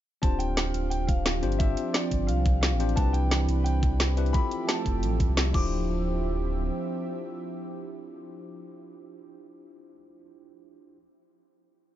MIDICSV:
0, 0, Header, 1, 6, 480
1, 0, Start_track
1, 0, Tempo, 342857
1, 321, Time_signature, 4, 2, 24, 8
1, 16740, End_track
2, 0, Start_track
2, 0, Title_t, "Grand piano"
2, 0, Program_c, 0, 0
2, 303, Note_on_c, 0, 81, 99
2, 543, Note_on_c, 0, 79, 99
2, 559, Note_off_c, 0, 81, 0
2, 1242, Note_off_c, 0, 79, 0
2, 1263, Note_on_c, 0, 79, 97
2, 1494, Note_off_c, 0, 79, 0
2, 1503, Note_on_c, 0, 77, 95
2, 2219, Note_on_c, 0, 76, 96
2, 2253, Note_off_c, 0, 77, 0
2, 2700, Note_on_c, 0, 74, 94
2, 2724, Note_off_c, 0, 76, 0
2, 3178, Note_on_c, 0, 77, 100
2, 3205, Note_off_c, 0, 74, 0
2, 3637, Note_off_c, 0, 77, 0
2, 3658, Note_on_c, 0, 77, 100
2, 4140, Note_on_c, 0, 81, 107
2, 4164, Note_off_c, 0, 77, 0
2, 4382, Note_on_c, 0, 79, 106
2, 4398, Note_off_c, 0, 81, 0
2, 5060, Note_off_c, 0, 79, 0
2, 5098, Note_on_c, 0, 79, 108
2, 5778, Note_off_c, 0, 79, 0
2, 6061, Note_on_c, 0, 83, 116
2, 6542, Note_on_c, 0, 81, 100
2, 6565, Note_off_c, 0, 83, 0
2, 7695, Note_off_c, 0, 81, 0
2, 7762, Note_on_c, 0, 86, 90
2, 13885, Note_off_c, 0, 86, 0
2, 16740, End_track
3, 0, Start_track
3, 0, Title_t, "Tine electric piano"
3, 0, Program_c, 1, 4
3, 304, Note_on_c, 1, 62, 95
3, 311, Note_on_c, 1, 60, 85
3, 319, Note_on_c, 1, 65, 86
3, 327, Note_on_c, 1, 67, 84
3, 336, Note_on_c, 1, 72, 105
3, 618, Control_c, 1, 64, 127
3, 1965, Note_off_c, 1, 62, 0
3, 1968, Note_off_c, 1, 60, 0
3, 1972, Note_off_c, 1, 65, 0
3, 1976, Note_off_c, 1, 67, 0
3, 1981, Note_off_c, 1, 72, 0
3, 1991, Note_on_c, 1, 60, 95
3, 1996, Note_on_c, 1, 62, 86
3, 1999, Note_on_c, 1, 65, 90
3, 2004, Note_on_c, 1, 67, 89
3, 2008, Note_on_c, 1, 72, 103
3, 2017, Control_c, 1, 64, 0
3, 2208, Note_off_c, 1, 60, 0
3, 2211, Note_off_c, 1, 62, 0
3, 2212, Note_off_c, 1, 65, 0
3, 2215, Note_off_c, 1, 67, 0
3, 2217, Note_off_c, 1, 72, 0
3, 2223, Note_on_c, 1, 60, 94
3, 2231, Note_on_c, 1, 62, 85
3, 2238, Note_on_c, 1, 65, 87
3, 2247, Note_on_c, 1, 67, 89
3, 2255, Note_on_c, 1, 72, 107
3, 2279, Control_c, 1, 64, 127
3, 3884, Note_off_c, 1, 60, 0
3, 3888, Note_off_c, 1, 62, 0
3, 3892, Note_off_c, 1, 65, 0
3, 3896, Note_off_c, 1, 67, 0
3, 3900, Note_off_c, 1, 72, 0
3, 3910, Note_on_c, 1, 60, 95
3, 3915, Note_on_c, 1, 62, 91
3, 3919, Note_on_c, 1, 65, 90
3, 3923, Note_on_c, 1, 67, 90
3, 3926, Note_on_c, 1, 72, 106
3, 4125, Note_off_c, 1, 60, 0
3, 4130, Note_off_c, 1, 62, 0
3, 4132, Note_off_c, 1, 65, 0
3, 4134, Note_off_c, 1, 67, 0
3, 4136, Note_off_c, 1, 72, 0
3, 4141, Note_on_c, 1, 60, 96
3, 4149, Note_on_c, 1, 62, 87
3, 4158, Note_on_c, 1, 64, 89
3, 4166, Note_on_c, 1, 67, 89
3, 4173, Note_on_c, 1, 71, 106
3, 4179, Control_c, 1, 64, 0
3, 4428, Control_c, 1, 64, 127
3, 5804, Note_off_c, 1, 60, 0
3, 5807, Note_off_c, 1, 62, 0
3, 5812, Note_off_c, 1, 64, 0
3, 5816, Note_off_c, 1, 67, 0
3, 5819, Note_off_c, 1, 71, 0
3, 5833, Note_on_c, 1, 60, 97
3, 5838, Note_on_c, 1, 62, 88
3, 5841, Note_on_c, 1, 64, 89
3, 5846, Note_on_c, 1, 67, 88
3, 5849, Note_on_c, 1, 71, 108
3, 6049, Note_off_c, 1, 60, 0
3, 6052, Note_off_c, 1, 62, 0
3, 6053, Note_off_c, 1, 64, 0
3, 6056, Note_off_c, 1, 67, 0
3, 6057, Note_off_c, 1, 71, 0
3, 6065, Note_on_c, 1, 60, 96
3, 6073, Note_on_c, 1, 64, 87
3, 6081, Note_on_c, 1, 65, 89
3, 6089, Note_on_c, 1, 67, 90
3, 6097, Control_c, 1, 64, 0
3, 6098, Note_on_c, 1, 69, 104
3, 6357, Control_c, 1, 64, 127
3, 7725, Note_off_c, 1, 60, 0
3, 7729, Note_off_c, 1, 64, 0
3, 7733, Note_off_c, 1, 65, 0
3, 7737, Note_off_c, 1, 67, 0
3, 7738, Note_on_c, 1, 62, 88
3, 7742, Note_off_c, 1, 69, 0
3, 7749, Note_on_c, 1, 64, 82
3, 7761, Note_on_c, 1, 65, 79
3, 7774, Note_on_c, 1, 67, 78
3, 7778, Control_c, 1, 64, 0
3, 7785, Note_on_c, 1, 72, 95
3, 7885, Control_c, 1, 64, 127
3, 8018, Control_c, 1, 64, 0
3, 8232, Control_c, 1, 64, 127
3, 13873, Note_off_c, 1, 62, 0
3, 13878, Note_off_c, 1, 64, 0
3, 13884, Note_off_c, 1, 65, 0
3, 13891, Note_off_c, 1, 67, 0
3, 13897, Note_off_c, 1, 72, 0
3, 15360, Control_c, 1, 64, 0
3, 16740, End_track
4, 0, Start_track
4, 0, Title_t, "Analog synth pad"
4, 0, Program_c, 2, 89
4, 319, Note_on_c, 2, 53, 84
4, 319, Note_on_c, 2, 60, 76
4, 319, Note_on_c, 2, 67, 91
4, 319, Note_on_c, 2, 77, 73
4, 1982, Note_off_c, 2, 77, 0
4, 2000, Note_on_c, 2, 62, 80
4, 4121, Note_off_c, 2, 53, 0
4, 4121, Note_off_c, 2, 67, 0
4, 4159, Note_on_c, 2, 52, 81
4, 4160, Note_on_c, 2, 71, 93
4, 6023, Note_off_c, 2, 60, 0
4, 6039, Note_off_c, 2, 62, 0
4, 6060, Note_off_c, 2, 52, 0
4, 6060, Note_off_c, 2, 71, 0
4, 6082, Note_on_c, 2, 53, 83
4, 6082, Note_on_c, 2, 57, 75
4, 6082, Note_on_c, 2, 67, 91
4, 6082, Note_on_c, 2, 76, 76
4, 7744, Note_off_c, 2, 53, 0
4, 7744, Note_off_c, 2, 57, 0
4, 7744, Note_off_c, 2, 67, 0
4, 7744, Note_off_c, 2, 76, 0
4, 7759, Note_on_c, 2, 76, 80
4, 7760, Note_on_c, 2, 60, 80
4, 7760, Note_on_c, 2, 67, 96
4, 7761, Note_on_c, 2, 53, 86
4, 12904, Note_off_c, 2, 53, 0
4, 12904, Note_off_c, 2, 60, 0
4, 12904, Note_off_c, 2, 67, 0
4, 12904, Note_off_c, 2, 76, 0
4, 16740, End_track
5, 0, Start_track
5, 0, Title_t, "Sub bass"
5, 0, Program_c, 3, 38
5, 320, Note_on_c, 3, 26, 99
5, 1022, Note_off_c, 3, 26, 0
5, 1040, Note_on_c, 3, 26, 100
5, 1982, Note_off_c, 3, 26, 0
5, 2000, Note_on_c, 3, 31, 102
5, 2462, Note_off_c, 3, 31, 0
5, 2960, Note_on_c, 3, 31, 100
5, 3199, Note_on_c, 3, 36, 97
5, 3220, Note_off_c, 3, 31, 0
5, 3804, Note_on_c, 3, 33, 104
5, 3825, Note_off_c, 3, 36, 0
5, 4141, Note_off_c, 3, 33, 0
5, 4160, Note_on_c, 3, 36, 102
5, 4862, Note_off_c, 3, 36, 0
5, 4880, Note_on_c, 3, 36, 99
5, 6062, Note_off_c, 3, 36, 0
5, 6801, Note_on_c, 3, 29, 102
5, 7042, Note_on_c, 3, 33, 101
5, 7063, Note_off_c, 3, 29, 0
5, 7399, Note_off_c, 3, 33, 0
5, 7408, Note_on_c, 3, 36, 96
5, 7742, Note_off_c, 3, 36, 0
5, 7760, Note_on_c, 3, 26, 101
5, 9384, Note_off_c, 3, 26, 0
5, 16740, End_track
6, 0, Start_track
6, 0, Title_t, "Drums"
6, 320, Note_on_c, 9, 36, 119
6, 320, Note_on_c, 9, 42, 97
6, 460, Note_off_c, 9, 36, 0
6, 460, Note_off_c, 9, 42, 0
6, 561, Note_on_c, 9, 42, 72
6, 701, Note_off_c, 9, 42, 0
6, 800, Note_on_c, 9, 38, 121
6, 800, Note_on_c, 9, 42, 97
6, 940, Note_off_c, 9, 38, 0
6, 940, Note_off_c, 9, 42, 0
6, 1040, Note_on_c, 9, 42, 71
6, 1180, Note_off_c, 9, 42, 0
6, 1280, Note_on_c, 9, 42, 99
6, 1420, Note_off_c, 9, 42, 0
6, 1520, Note_on_c, 9, 36, 105
6, 1520, Note_on_c, 9, 42, 71
6, 1660, Note_off_c, 9, 36, 0
6, 1660, Note_off_c, 9, 42, 0
6, 1760, Note_on_c, 9, 38, 118
6, 1760, Note_on_c, 9, 42, 98
6, 1900, Note_off_c, 9, 38, 0
6, 1900, Note_off_c, 9, 42, 0
6, 1999, Note_on_c, 9, 42, 73
6, 2126, Note_off_c, 9, 42, 0
6, 2126, Note_on_c, 9, 42, 39
6, 2239, Note_off_c, 9, 42, 0
6, 2239, Note_on_c, 9, 42, 98
6, 2240, Note_on_c, 9, 36, 127
6, 2379, Note_off_c, 9, 42, 0
6, 2380, Note_off_c, 9, 36, 0
6, 2480, Note_on_c, 9, 42, 72
6, 2620, Note_off_c, 9, 42, 0
6, 2720, Note_on_c, 9, 38, 126
6, 2720, Note_on_c, 9, 42, 98
6, 2860, Note_off_c, 9, 38, 0
6, 2860, Note_off_c, 9, 42, 0
6, 2959, Note_on_c, 9, 36, 66
6, 2960, Note_on_c, 9, 42, 72
6, 3099, Note_off_c, 9, 36, 0
6, 3100, Note_off_c, 9, 42, 0
6, 3199, Note_on_c, 9, 42, 101
6, 3339, Note_off_c, 9, 42, 0
6, 3439, Note_on_c, 9, 36, 113
6, 3439, Note_on_c, 9, 42, 69
6, 3579, Note_off_c, 9, 36, 0
6, 3579, Note_off_c, 9, 42, 0
6, 3679, Note_on_c, 9, 38, 124
6, 3679, Note_on_c, 9, 42, 97
6, 3819, Note_off_c, 9, 38, 0
6, 3819, Note_off_c, 9, 42, 0
6, 3919, Note_on_c, 9, 42, 71
6, 4046, Note_off_c, 9, 42, 0
6, 4046, Note_on_c, 9, 42, 38
6, 4159, Note_off_c, 9, 42, 0
6, 4159, Note_on_c, 9, 36, 127
6, 4159, Note_on_c, 9, 42, 96
6, 4299, Note_off_c, 9, 36, 0
6, 4299, Note_off_c, 9, 42, 0
6, 4400, Note_on_c, 9, 42, 70
6, 4540, Note_off_c, 9, 42, 0
6, 4640, Note_on_c, 9, 38, 125
6, 4640, Note_on_c, 9, 42, 94
6, 4780, Note_off_c, 9, 38, 0
6, 4780, Note_off_c, 9, 42, 0
6, 4880, Note_on_c, 9, 42, 71
6, 5020, Note_off_c, 9, 42, 0
6, 5121, Note_on_c, 9, 42, 97
6, 5261, Note_off_c, 9, 42, 0
6, 5360, Note_on_c, 9, 36, 112
6, 5361, Note_on_c, 9, 42, 70
6, 5500, Note_off_c, 9, 36, 0
6, 5501, Note_off_c, 9, 42, 0
6, 5600, Note_on_c, 9, 38, 126
6, 5600, Note_on_c, 9, 42, 97
6, 5740, Note_off_c, 9, 38, 0
6, 5740, Note_off_c, 9, 42, 0
6, 5840, Note_on_c, 9, 42, 70
6, 5967, Note_off_c, 9, 42, 0
6, 5967, Note_on_c, 9, 42, 39
6, 6080, Note_off_c, 9, 42, 0
6, 6080, Note_on_c, 9, 42, 91
6, 6081, Note_on_c, 9, 36, 126
6, 6220, Note_off_c, 9, 42, 0
6, 6221, Note_off_c, 9, 36, 0
6, 6320, Note_on_c, 9, 42, 67
6, 6460, Note_off_c, 9, 42, 0
6, 6561, Note_on_c, 9, 38, 122
6, 6561, Note_on_c, 9, 42, 94
6, 6701, Note_off_c, 9, 38, 0
6, 6701, Note_off_c, 9, 42, 0
6, 6801, Note_on_c, 9, 36, 65
6, 6802, Note_on_c, 9, 42, 68
6, 6941, Note_off_c, 9, 36, 0
6, 6942, Note_off_c, 9, 42, 0
6, 7041, Note_on_c, 9, 42, 94
6, 7181, Note_off_c, 9, 42, 0
6, 7281, Note_on_c, 9, 36, 106
6, 7281, Note_on_c, 9, 42, 67
6, 7421, Note_off_c, 9, 36, 0
6, 7421, Note_off_c, 9, 42, 0
6, 7522, Note_on_c, 9, 38, 127
6, 7522, Note_on_c, 9, 42, 91
6, 7662, Note_off_c, 9, 38, 0
6, 7662, Note_off_c, 9, 42, 0
6, 7760, Note_on_c, 9, 49, 90
6, 7761, Note_on_c, 9, 36, 116
6, 7900, Note_off_c, 9, 49, 0
6, 7901, Note_off_c, 9, 36, 0
6, 16740, End_track
0, 0, End_of_file